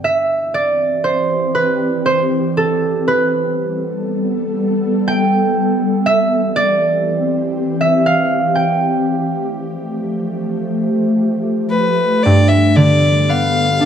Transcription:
0, 0, Header, 1, 4, 480
1, 0, Start_track
1, 0, Tempo, 1018676
1, 7, Time_signature, 3, 2, 24, 8
1, 1447, Tempo, 998336
1, 4327, Tempo, 1025641
1, 4807, Tempo, 1065719
1, 6503, End_track
2, 0, Start_track
2, 0, Title_t, "Fiddle"
2, 0, Program_c, 0, 110
2, 5534, Note_on_c, 0, 71, 67
2, 5772, Note_on_c, 0, 74, 80
2, 5779, Note_off_c, 0, 71, 0
2, 5885, Note_on_c, 0, 76, 70
2, 5892, Note_off_c, 0, 74, 0
2, 6011, Note_on_c, 0, 74, 82
2, 6018, Note_off_c, 0, 76, 0
2, 6253, Note_on_c, 0, 77, 83
2, 6260, Note_off_c, 0, 74, 0
2, 6503, Note_off_c, 0, 77, 0
2, 6503, End_track
3, 0, Start_track
3, 0, Title_t, "Harp"
3, 0, Program_c, 1, 46
3, 0, Note_on_c, 1, 59, 36
3, 0, Note_on_c, 1, 62, 43
3, 0, Note_on_c, 1, 79, 63
3, 20, Note_on_c, 1, 76, 74
3, 255, Note_on_c, 1, 74, 76
3, 256, Note_off_c, 1, 79, 0
3, 466, Note_off_c, 1, 59, 0
3, 490, Note_on_c, 1, 72, 64
3, 573, Note_off_c, 1, 62, 0
3, 729, Note_on_c, 1, 71, 69
3, 757, Note_off_c, 1, 72, 0
3, 832, Note_off_c, 1, 76, 0
3, 969, Note_on_c, 1, 72, 75
3, 997, Note_off_c, 1, 71, 0
3, 1034, Note_off_c, 1, 72, 0
3, 1126, Note_off_c, 1, 74, 0
3, 1212, Note_on_c, 1, 69, 71
3, 1450, Note_on_c, 1, 71, 78
3, 2263, Note_off_c, 1, 69, 0
3, 2411, Note_on_c, 1, 79, 82
3, 2435, Note_off_c, 1, 71, 0
3, 2884, Note_on_c, 1, 76, 88
3, 3124, Note_on_c, 1, 74, 94
3, 3158, Note_off_c, 1, 79, 0
3, 3712, Note_off_c, 1, 76, 0
3, 3724, Note_on_c, 1, 76, 75
3, 3846, Note_on_c, 1, 77, 82
3, 3875, Note_off_c, 1, 76, 0
3, 4012, Note_off_c, 1, 74, 0
3, 4083, Note_on_c, 1, 79, 68
3, 4638, Note_off_c, 1, 77, 0
3, 5271, Note_off_c, 1, 79, 0
3, 5783, Note_on_c, 1, 43, 50
3, 6012, Note_on_c, 1, 50, 44
3, 6252, Note_on_c, 1, 59, 46
3, 6481, Note_on_c, 1, 62, 46
3, 6503, Note_off_c, 1, 43, 0
3, 6503, Note_off_c, 1, 50, 0
3, 6503, Note_off_c, 1, 59, 0
3, 6503, Note_off_c, 1, 62, 0
3, 6503, End_track
4, 0, Start_track
4, 0, Title_t, "Ambient pad"
4, 0, Program_c, 2, 92
4, 12, Note_on_c, 2, 67, 75
4, 15, Note_on_c, 2, 60, 58
4, 16, Note_on_c, 2, 52, 74
4, 1435, Note_off_c, 2, 67, 0
4, 1436, Note_off_c, 2, 60, 0
4, 1437, Note_off_c, 2, 52, 0
4, 1441, Note_on_c, 2, 69, 75
4, 1446, Note_on_c, 2, 59, 62
4, 1447, Note_on_c, 2, 55, 68
4, 2862, Note_off_c, 2, 69, 0
4, 2864, Note_off_c, 2, 59, 0
4, 2865, Note_off_c, 2, 55, 0
4, 2876, Note_on_c, 2, 67, 77
4, 2880, Note_on_c, 2, 52, 72
4, 2884, Note_on_c, 2, 60, 68
4, 4314, Note_off_c, 2, 52, 0
4, 4314, Note_on_c, 2, 57, 62
4, 4315, Note_off_c, 2, 60, 0
4, 4319, Note_on_c, 2, 53, 68
4, 5756, Note_off_c, 2, 57, 0
4, 5757, Note_off_c, 2, 67, 0
4, 5758, Note_off_c, 2, 53, 0
4, 5782, Note_on_c, 2, 50, 68
4, 5784, Note_on_c, 2, 59, 61
4, 5786, Note_on_c, 2, 67, 75
4, 6503, Note_off_c, 2, 50, 0
4, 6503, Note_off_c, 2, 59, 0
4, 6503, Note_off_c, 2, 67, 0
4, 6503, End_track
0, 0, End_of_file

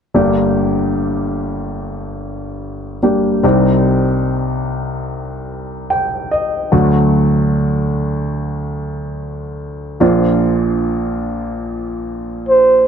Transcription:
0, 0, Header, 1, 3, 480
1, 0, Start_track
1, 0, Key_signature, -2, "minor"
1, 0, Tempo, 821918
1, 86, Time_signature, 4, 2, 24, 8
1, 7520, End_track
2, 0, Start_track
2, 0, Title_t, "Flugelhorn"
2, 0, Program_c, 0, 56
2, 7294, Note_on_c, 0, 72, 80
2, 7520, Note_off_c, 0, 72, 0
2, 7520, End_track
3, 0, Start_track
3, 0, Title_t, "Grand piano"
3, 0, Program_c, 1, 0
3, 83, Note_on_c, 1, 55, 43
3, 85, Note_on_c, 1, 58, 41
3, 86, Note_on_c, 1, 43, 43
3, 87, Note_on_c, 1, 31, 46
3, 87, Note_on_c, 1, 62, 39
3, 90, Note_on_c, 1, 67, 50
3, 181, Control_c, 1, 64, 127
3, 1742, Note_off_c, 1, 55, 0
3, 1742, Note_off_c, 1, 58, 0
3, 1743, Note_off_c, 1, 62, 0
3, 1745, Note_off_c, 1, 67, 0
3, 1767, Note_on_c, 1, 55, 41
3, 1768, Note_on_c, 1, 62, 33
3, 1769, Note_on_c, 1, 58, 32
3, 1771, Note_on_c, 1, 67, 41
3, 1983, Note_off_c, 1, 31, 0
3, 1983, Note_off_c, 1, 43, 0
3, 1996, Note_off_c, 1, 55, 0
3, 2002, Note_off_c, 1, 67, 0
3, 2005, Note_on_c, 1, 55, 50
3, 2006, Note_on_c, 1, 60, 43
3, 2007, Note_off_c, 1, 62, 0
3, 2008, Note_off_c, 1, 58, 0
3, 2008, Note_on_c, 1, 36, 50
3, 2008, Note_on_c, 1, 48, 47
3, 2010, Note_on_c, 1, 63, 39
3, 2011, Note_on_c, 1, 67, 50
3, 2014, Control_c, 1, 64, 0
3, 2129, Control_c, 1, 64, 127
3, 3447, Note_on_c, 1, 79, 48
3, 3670, Note_off_c, 1, 79, 0
3, 3688, Note_on_c, 1, 75, 47
3, 3902, Note_off_c, 1, 55, 0
3, 3903, Note_off_c, 1, 60, 0
3, 3904, Note_off_c, 1, 36, 0
3, 3904, Note_off_c, 1, 48, 0
3, 3905, Note_off_c, 1, 63, 0
3, 3905, Note_off_c, 1, 67, 0
3, 3910, Note_off_c, 1, 75, 0
3, 3923, Note_on_c, 1, 54, 50
3, 3927, Note_on_c, 1, 38, 51
3, 3928, Note_on_c, 1, 57, 50
3, 3928, Note_on_c, 1, 62, 45
3, 3929, Note_on_c, 1, 50, 46
3, 3931, Note_on_c, 1, 66, 60
3, 3934, Control_c, 1, 64, 0
3, 4022, Control_c, 1, 64, 127
3, 5822, Note_off_c, 1, 54, 0
3, 5823, Note_off_c, 1, 38, 0
3, 5824, Note_off_c, 1, 57, 0
3, 5824, Note_off_c, 1, 62, 0
3, 5825, Note_off_c, 1, 50, 0
3, 5825, Note_off_c, 1, 66, 0
3, 5842, Note_on_c, 1, 53, 52
3, 5845, Note_on_c, 1, 46, 51
3, 5845, Note_on_c, 1, 62, 51
3, 5846, Note_on_c, 1, 34, 52
3, 5846, Note_on_c, 1, 58, 46
3, 5849, Note_on_c, 1, 65, 53
3, 5853, Control_c, 1, 64, 0
3, 5965, Control_c, 1, 64, 127
3, 7520, Note_off_c, 1, 34, 0
3, 7520, Note_off_c, 1, 46, 0
3, 7520, Note_off_c, 1, 53, 0
3, 7520, Note_off_c, 1, 58, 0
3, 7520, Note_off_c, 1, 62, 0
3, 7520, Note_off_c, 1, 65, 0
3, 7520, End_track
0, 0, End_of_file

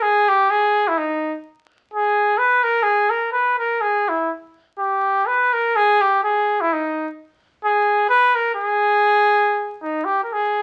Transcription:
0, 0, Header, 1, 2, 480
1, 0, Start_track
1, 0, Key_signature, 5, "minor"
1, 0, Tempo, 476948
1, 10, Time_signature, 3, 2, 24, 8
1, 8650, Tempo, 488998
1, 10642, End_track
2, 0, Start_track
2, 0, Title_t, "Trumpet"
2, 0, Program_c, 0, 56
2, 20, Note_on_c, 0, 68, 100
2, 287, Note_on_c, 0, 67, 91
2, 302, Note_off_c, 0, 68, 0
2, 506, Note_on_c, 0, 68, 88
2, 521, Note_off_c, 0, 67, 0
2, 886, Note_on_c, 0, 64, 77
2, 901, Note_off_c, 0, 68, 0
2, 982, Note_on_c, 0, 63, 71
2, 997, Note_off_c, 0, 64, 0
2, 1346, Note_off_c, 0, 63, 0
2, 1949, Note_on_c, 0, 68, 87
2, 2394, Note_on_c, 0, 71, 98
2, 2409, Note_off_c, 0, 68, 0
2, 2652, Note_on_c, 0, 70, 96
2, 2667, Note_off_c, 0, 71, 0
2, 2844, Note_on_c, 0, 68, 97
2, 2860, Note_off_c, 0, 70, 0
2, 3122, Note_on_c, 0, 70, 85
2, 3137, Note_off_c, 0, 68, 0
2, 3338, Note_off_c, 0, 70, 0
2, 3344, Note_on_c, 0, 71, 78
2, 3597, Note_off_c, 0, 71, 0
2, 3612, Note_on_c, 0, 70, 77
2, 3836, Note_on_c, 0, 68, 80
2, 3851, Note_off_c, 0, 70, 0
2, 4111, Note_on_c, 0, 64, 67
2, 4126, Note_off_c, 0, 68, 0
2, 4329, Note_off_c, 0, 64, 0
2, 4818, Note_on_c, 0, 67, 77
2, 5306, Note_on_c, 0, 71, 91
2, 5321, Note_off_c, 0, 67, 0
2, 5568, Note_on_c, 0, 70, 90
2, 5583, Note_off_c, 0, 71, 0
2, 5794, Note_on_c, 0, 68, 102
2, 5809, Note_off_c, 0, 70, 0
2, 6048, Note_on_c, 0, 67, 86
2, 6063, Note_off_c, 0, 68, 0
2, 6261, Note_off_c, 0, 67, 0
2, 6272, Note_on_c, 0, 68, 78
2, 6653, Note_on_c, 0, 64, 80
2, 6668, Note_off_c, 0, 68, 0
2, 6772, Note_on_c, 0, 63, 73
2, 6787, Note_off_c, 0, 64, 0
2, 7123, Note_off_c, 0, 63, 0
2, 7695, Note_on_c, 0, 68, 88
2, 8138, Note_off_c, 0, 68, 0
2, 8147, Note_on_c, 0, 71, 102
2, 8407, Note_on_c, 0, 70, 90
2, 8422, Note_off_c, 0, 71, 0
2, 8600, Note_off_c, 0, 70, 0
2, 8607, Note_on_c, 0, 68, 99
2, 9806, Note_off_c, 0, 68, 0
2, 9857, Note_on_c, 0, 63, 68
2, 10075, Note_on_c, 0, 67, 72
2, 10090, Note_off_c, 0, 63, 0
2, 10256, Note_off_c, 0, 67, 0
2, 10262, Note_on_c, 0, 70, 46
2, 10347, Note_on_c, 0, 68, 70
2, 10362, Note_off_c, 0, 70, 0
2, 10642, Note_off_c, 0, 68, 0
2, 10642, End_track
0, 0, End_of_file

